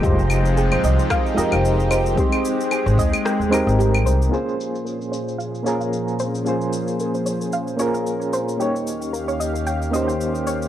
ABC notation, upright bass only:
X:1
M:4/4
L:1/16
Q:"Swing 16ths" 1/4=112
K:Bbdor
V:1 name="Upright bass" clef=bass
F,,,4- F,,, B,,, C,, z3 F,, F,,,4- F,,, | z4 z A,,, z3 E,,2 A,,,3 C,,2 | z16 | z16 |
z16 |]